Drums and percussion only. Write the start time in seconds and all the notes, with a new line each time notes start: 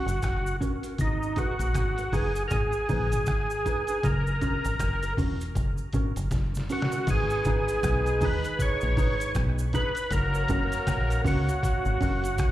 0.08 closed hi-hat, cabasa
0.22 kick, cross-stick, closed hi-hat, cabasa
0.47 cabasa
0.61 kick, closed hi-hat, cabasa
0.83 closed hi-hat, cabasa
0.98 kick, closed hi-hat, cabasa
1.23 cabasa
1.36 kick, closed hi-hat, cabasa
1.59 closed hi-hat, cabasa
1.74 kick, cross-stick, closed hi-hat, cabasa
1.98 closed hi-hat, cabasa
2.12 kick, open hi-hat, cabasa
2.36 closed hi-hat, cabasa
2.51 kick, closed hi-hat, cabasa
2.72 cabasa
2.89 kick, open hi-hat, cabasa
3.12 closed hi-hat, cabasa
3.26 kick, cross-stick, closed hi-hat, cabasa
3.50 cabasa
3.66 kick, closed hi-hat, cabasa
3.87 closed hi-hat, cabasa
4.03 kick, closed hi-hat, cabasa
4.27 cabasa
4.41 kick, closed hi-hat, cabasa
4.64 closed hi-hat, cabasa
4.79 kick, cross-stick, closed hi-hat, cabasa
5.03 closed hi-hat, cabasa
5.17 kick, open hi-hat, cabasa
5.41 closed hi-hat, cabasa
5.55 kick, closed hi-hat, cabasa
5.78 cabasa
5.93 kick, closed hi-hat, cabasa
6.16 closed hi-hat, cabasa
6.31 kick, snare, closed hi-hat, cabasa
6.55 snare, cabasa
6.69 open hi-hat, cabasa
6.82 snare
6.92 closed hi-hat, cabasa
7.07 kick, closed hi-hat, crash, cabasa
7.30 cabasa
7.45 kick, closed hi-hat, cabasa
7.68 closed hi-hat, cabasa
7.83 kick, cross-stick, closed hi-hat, cabasa
8.06 closed hi-hat, cabasa
8.21 kick, open hi-hat, cabasa
8.44 closed hi-hat, cabasa
8.59 kick, closed hi-hat, cabasa
8.81 cabasa
8.97 kick, open hi-hat, cabasa
9.20 closed hi-hat, cabasa
9.35 kick, cross-stick, closed hi-hat, cabasa
9.59 cabasa
9.73 kick, closed hi-hat, cabasa
9.95 closed hi-hat, cabasa
10.11 kick, closed hi-hat, cabasa
10.35 cabasa
10.48 kick, closed hi-hat, cabasa
10.72 closed hi-hat, cabasa
10.87 kick, cross-stick, closed hi-hat, cabasa
11.10 closed hi-hat, cabasa
11.25 kick, open hi-hat, cabasa
11.49 closed hi-hat, cabasa
11.63 kick, closed hi-hat, cabasa
11.85 cabasa
12.01 kick, open hi-hat, cabasa
12.24 closed hi-hat, cabasa
12.38 kick, cross-stick, closed hi-hat, cabasa